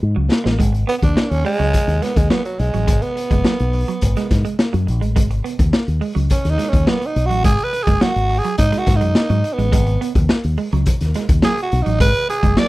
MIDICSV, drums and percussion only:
0, 0, Header, 1, 2, 480
1, 0, Start_track
1, 0, Key_signature, 5, "minor"
1, 0, Tempo, 570342
1, 502, Time_signature, 4, 2, 24, 8
1, 10673, End_track
2, 0, Start_track
2, 0, Title_t, "Drums"
2, 267, Note_on_c, 9, 38, 97
2, 351, Note_off_c, 9, 38, 0
2, 386, Note_on_c, 9, 38, 86
2, 470, Note_off_c, 9, 38, 0
2, 502, Note_on_c, 9, 36, 92
2, 507, Note_on_c, 9, 42, 89
2, 586, Note_off_c, 9, 36, 0
2, 591, Note_off_c, 9, 42, 0
2, 626, Note_on_c, 9, 42, 51
2, 711, Note_off_c, 9, 42, 0
2, 749, Note_on_c, 9, 42, 73
2, 834, Note_off_c, 9, 42, 0
2, 863, Note_on_c, 9, 36, 97
2, 867, Note_on_c, 9, 42, 45
2, 947, Note_off_c, 9, 36, 0
2, 951, Note_off_c, 9, 42, 0
2, 982, Note_on_c, 9, 38, 110
2, 1066, Note_off_c, 9, 38, 0
2, 1107, Note_on_c, 9, 42, 55
2, 1191, Note_off_c, 9, 42, 0
2, 1220, Note_on_c, 9, 46, 77
2, 1304, Note_off_c, 9, 46, 0
2, 1348, Note_on_c, 9, 42, 51
2, 1432, Note_off_c, 9, 42, 0
2, 1459, Note_on_c, 9, 42, 84
2, 1466, Note_on_c, 9, 36, 87
2, 1543, Note_off_c, 9, 42, 0
2, 1550, Note_off_c, 9, 36, 0
2, 1585, Note_on_c, 9, 42, 56
2, 1669, Note_off_c, 9, 42, 0
2, 1703, Note_on_c, 9, 42, 74
2, 1710, Note_on_c, 9, 38, 35
2, 1787, Note_off_c, 9, 42, 0
2, 1794, Note_off_c, 9, 38, 0
2, 1822, Note_on_c, 9, 36, 103
2, 1825, Note_on_c, 9, 42, 60
2, 1906, Note_off_c, 9, 36, 0
2, 1909, Note_off_c, 9, 42, 0
2, 1939, Note_on_c, 9, 38, 113
2, 2023, Note_off_c, 9, 38, 0
2, 2064, Note_on_c, 9, 42, 55
2, 2148, Note_off_c, 9, 42, 0
2, 2183, Note_on_c, 9, 42, 72
2, 2267, Note_off_c, 9, 42, 0
2, 2303, Note_on_c, 9, 42, 48
2, 2388, Note_off_c, 9, 42, 0
2, 2422, Note_on_c, 9, 36, 106
2, 2422, Note_on_c, 9, 42, 95
2, 2506, Note_off_c, 9, 36, 0
2, 2506, Note_off_c, 9, 42, 0
2, 2540, Note_on_c, 9, 42, 46
2, 2624, Note_off_c, 9, 42, 0
2, 2668, Note_on_c, 9, 42, 78
2, 2752, Note_off_c, 9, 42, 0
2, 2783, Note_on_c, 9, 36, 91
2, 2786, Note_on_c, 9, 42, 48
2, 2868, Note_off_c, 9, 36, 0
2, 2870, Note_off_c, 9, 42, 0
2, 2899, Note_on_c, 9, 38, 107
2, 2983, Note_off_c, 9, 38, 0
2, 3024, Note_on_c, 9, 42, 54
2, 3108, Note_off_c, 9, 42, 0
2, 3140, Note_on_c, 9, 46, 80
2, 3224, Note_off_c, 9, 46, 0
2, 3265, Note_on_c, 9, 42, 51
2, 3350, Note_off_c, 9, 42, 0
2, 3378, Note_on_c, 9, 42, 88
2, 3386, Note_on_c, 9, 36, 74
2, 3462, Note_off_c, 9, 42, 0
2, 3471, Note_off_c, 9, 36, 0
2, 3504, Note_on_c, 9, 42, 60
2, 3506, Note_on_c, 9, 38, 31
2, 3588, Note_off_c, 9, 42, 0
2, 3590, Note_off_c, 9, 38, 0
2, 3625, Note_on_c, 9, 36, 91
2, 3625, Note_on_c, 9, 42, 75
2, 3631, Note_on_c, 9, 38, 35
2, 3709, Note_off_c, 9, 42, 0
2, 3710, Note_off_c, 9, 36, 0
2, 3715, Note_off_c, 9, 38, 0
2, 3747, Note_on_c, 9, 42, 59
2, 3831, Note_off_c, 9, 42, 0
2, 3862, Note_on_c, 9, 38, 104
2, 3946, Note_off_c, 9, 38, 0
2, 3987, Note_on_c, 9, 42, 58
2, 4071, Note_off_c, 9, 42, 0
2, 4108, Note_on_c, 9, 42, 67
2, 4193, Note_off_c, 9, 42, 0
2, 4227, Note_on_c, 9, 42, 53
2, 4311, Note_off_c, 9, 42, 0
2, 4345, Note_on_c, 9, 36, 108
2, 4346, Note_on_c, 9, 42, 94
2, 4430, Note_off_c, 9, 36, 0
2, 4430, Note_off_c, 9, 42, 0
2, 4466, Note_on_c, 9, 42, 48
2, 4550, Note_off_c, 9, 42, 0
2, 4591, Note_on_c, 9, 42, 71
2, 4675, Note_off_c, 9, 42, 0
2, 4706, Note_on_c, 9, 36, 94
2, 4708, Note_on_c, 9, 42, 56
2, 4790, Note_off_c, 9, 36, 0
2, 4792, Note_off_c, 9, 42, 0
2, 4824, Note_on_c, 9, 38, 116
2, 4908, Note_off_c, 9, 38, 0
2, 4948, Note_on_c, 9, 42, 54
2, 5032, Note_off_c, 9, 42, 0
2, 5064, Note_on_c, 9, 46, 74
2, 5148, Note_off_c, 9, 46, 0
2, 5189, Note_on_c, 9, 42, 53
2, 5273, Note_off_c, 9, 42, 0
2, 5301, Note_on_c, 9, 42, 89
2, 5308, Note_on_c, 9, 36, 84
2, 5385, Note_off_c, 9, 42, 0
2, 5392, Note_off_c, 9, 36, 0
2, 5426, Note_on_c, 9, 42, 59
2, 5428, Note_on_c, 9, 38, 30
2, 5511, Note_off_c, 9, 42, 0
2, 5513, Note_off_c, 9, 38, 0
2, 5545, Note_on_c, 9, 42, 69
2, 5552, Note_on_c, 9, 38, 36
2, 5629, Note_off_c, 9, 42, 0
2, 5636, Note_off_c, 9, 38, 0
2, 5665, Note_on_c, 9, 36, 99
2, 5668, Note_on_c, 9, 42, 57
2, 5749, Note_off_c, 9, 36, 0
2, 5752, Note_off_c, 9, 42, 0
2, 5782, Note_on_c, 9, 38, 112
2, 5867, Note_off_c, 9, 38, 0
2, 5906, Note_on_c, 9, 42, 55
2, 5990, Note_off_c, 9, 42, 0
2, 6026, Note_on_c, 9, 42, 70
2, 6110, Note_off_c, 9, 42, 0
2, 6146, Note_on_c, 9, 42, 48
2, 6231, Note_off_c, 9, 42, 0
2, 6264, Note_on_c, 9, 36, 115
2, 6264, Note_on_c, 9, 42, 84
2, 6348, Note_off_c, 9, 36, 0
2, 6348, Note_off_c, 9, 42, 0
2, 6382, Note_on_c, 9, 42, 47
2, 6466, Note_off_c, 9, 42, 0
2, 6509, Note_on_c, 9, 42, 68
2, 6593, Note_off_c, 9, 42, 0
2, 6623, Note_on_c, 9, 42, 47
2, 6624, Note_on_c, 9, 36, 98
2, 6707, Note_off_c, 9, 42, 0
2, 6708, Note_off_c, 9, 36, 0
2, 6743, Note_on_c, 9, 38, 110
2, 6827, Note_off_c, 9, 38, 0
2, 6865, Note_on_c, 9, 42, 53
2, 6949, Note_off_c, 9, 42, 0
2, 6980, Note_on_c, 9, 46, 71
2, 7064, Note_off_c, 9, 46, 0
2, 7104, Note_on_c, 9, 42, 53
2, 7188, Note_off_c, 9, 42, 0
2, 7218, Note_on_c, 9, 42, 86
2, 7226, Note_on_c, 9, 36, 87
2, 7302, Note_off_c, 9, 42, 0
2, 7310, Note_off_c, 9, 36, 0
2, 7343, Note_on_c, 9, 42, 59
2, 7345, Note_on_c, 9, 38, 33
2, 7427, Note_off_c, 9, 42, 0
2, 7429, Note_off_c, 9, 38, 0
2, 7461, Note_on_c, 9, 42, 78
2, 7465, Note_on_c, 9, 36, 101
2, 7468, Note_on_c, 9, 38, 37
2, 7546, Note_off_c, 9, 42, 0
2, 7549, Note_off_c, 9, 36, 0
2, 7552, Note_off_c, 9, 38, 0
2, 7583, Note_on_c, 9, 42, 60
2, 7667, Note_off_c, 9, 42, 0
2, 7701, Note_on_c, 9, 38, 106
2, 7785, Note_off_c, 9, 38, 0
2, 7825, Note_on_c, 9, 42, 52
2, 7909, Note_off_c, 9, 42, 0
2, 7945, Note_on_c, 9, 42, 71
2, 8030, Note_off_c, 9, 42, 0
2, 8068, Note_on_c, 9, 42, 50
2, 8152, Note_off_c, 9, 42, 0
2, 8185, Note_on_c, 9, 36, 105
2, 8186, Note_on_c, 9, 42, 88
2, 8269, Note_off_c, 9, 36, 0
2, 8270, Note_off_c, 9, 42, 0
2, 8304, Note_on_c, 9, 42, 48
2, 8388, Note_off_c, 9, 42, 0
2, 8431, Note_on_c, 9, 42, 81
2, 8515, Note_off_c, 9, 42, 0
2, 8545, Note_on_c, 9, 36, 91
2, 8547, Note_on_c, 9, 42, 51
2, 8629, Note_off_c, 9, 36, 0
2, 8631, Note_off_c, 9, 42, 0
2, 8661, Note_on_c, 9, 38, 111
2, 8745, Note_off_c, 9, 38, 0
2, 8784, Note_on_c, 9, 42, 58
2, 8869, Note_off_c, 9, 42, 0
2, 8900, Note_on_c, 9, 46, 71
2, 8984, Note_off_c, 9, 46, 0
2, 9026, Note_on_c, 9, 42, 52
2, 9110, Note_off_c, 9, 42, 0
2, 9137, Note_on_c, 9, 42, 93
2, 9146, Note_on_c, 9, 36, 92
2, 9222, Note_off_c, 9, 42, 0
2, 9230, Note_off_c, 9, 36, 0
2, 9263, Note_on_c, 9, 42, 61
2, 9265, Note_on_c, 9, 38, 33
2, 9347, Note_off_c, 9, 42, 0
2, 9349, Note_off_c, 9, 38, 0
2, 9378, Note_on_c, 9, 42, 68
2, 9385, Note_on_c, 9, 38, 38
2, 9462, Note_off_c, 9, 42, 0
2, 9469, Note_off_c, 9, 38, 0
2, 9501, Note_on_c, 9, 36, 102
2, 9501, Note_on_c, 9, 42, 63
2, 9586, Note_off_c, 9, 36, 0
2, 9586, Note_off_c, 9, 42, 0
2, 9614, Note_on_c, 9, 38, 120
2, 9698, Note_off_c, 9, 38, 0
2, 9745, Note_on_c, 9, 42, 59
2, 9829, Note_off_c, 9, 42, 0
2, 9862, Note_on_c, 9, 42, 76
2, 9946, Note_off_c, 9, 42, 0
2, 9981, Note_on_c, 9, 42, 51
2, 10066, Note_off_c, 9, 42, 0
2, 10101, Note_on_c, 9, 36, 107
2, 10102, Note_on_c, 9, 42, 103
2, 10186, Note_off_c, 9, 36, 0
2, 10186, Note_off_c, 9, 42, 0
2, 10220, Note_on_c, 9, 42, 52
2, 10304, Note_off_c, 9, 42, 0
2, 10348, Note_on_c, 9, 42, 77
2, 10432, Note_off_c, 9, 42, 0
2, 10461, Note_on_c, 9, 36, 95
2, 10464, Note_on_c, 9, 42, 53
2, 10546, Note_off_c, 9, 36, 0
2, 10549, Note_off_c, 9, 42, 0
2, 10578, Note_on_c, 9, 38, 111
2, 10662, Note_off_c, 9, 38, 0
2, 10673, End_track
0, 0, End_of_file